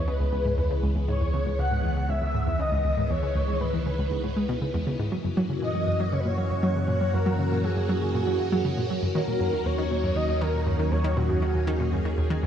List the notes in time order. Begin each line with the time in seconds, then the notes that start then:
Already playing: C#2 C#3 E3 G#3 B3 E4
0.08 C#3 B4
0.20 C#2
0.33 C#2
0.45 G#2
0.58 E2
0.71 C#3
0.83 C#2
0.96 C#2
1.08 G#2 D#3 C#5
1.21 E2
1.34 C#3
1.46 C#2
1.59 C#2 F#5
1.71 G#2
1.84 E2
1.97 C#3
2.09 C#2 E5
2.22 C#2
2.35 G#2
2.47 E2
2.59 C#3 D#5
2.72 C#2
2.85 C#2
2.97 G#2
3.10 E2 C#5
3.23 C#3
3.35 C#2
3.48 C#2
3.60 G#2 B4
3.73 E2
3.86 C#3
3.99 C#2
4.11 C#2
4.24 G#2
4.36 G#3
4.49 B2
4.62 C#3
4.74 E2
4.87 C#3
4.99 G#2
5.11 F#2 F#3 A#3 C#4 F#4
5.24 F#2
5.37 F#3
5.50 C#3
5.62 A#2 D#5
5.75 F#3
5.87 F#2
6.00 F#3
6.13 C#3 C#5
6.19 B4
6.25 A#2 C#5
6.38 F#3
6.50 F#2
6.63 F#3
6.76 C#3
6.88 A#2 C#5
7.01 F#3
7.14 F#2 A#4
7.26 F#3
7.39 C#3
7.52 A#2
7.64 F#3 G#4
7.77 F#2
7.89 F#3
8.02 C#3
8.14 A#2
8.27 F#3
8.40 F#2
8.52 F#3
8.65 C#3
8.77 A#2
8.90 F#3
9.03 F#2
9.15 D#2 D#3 A#4
9.28 A#2
9.41 F#2
9.53 D#3
9.66 D#2 C#5
9.78 D#3
9.91 A#2
10.04 F#2
10.16 D#3 D#5
10.29 D#2
10.41 D#3 A#4
10.54 A#2
10.67 F#2
10.79 D#3
10.91 D#2 C#5
11.04 D#3
11.16 A#2 F#4 G#4
11.29 F#2
11.42 D#3
11.55 D#2
11.67 D#3
11.80 A#2
11.93 F#2
12.05 D#3
12.18 D#2
12.30 D#3
12.43 D#2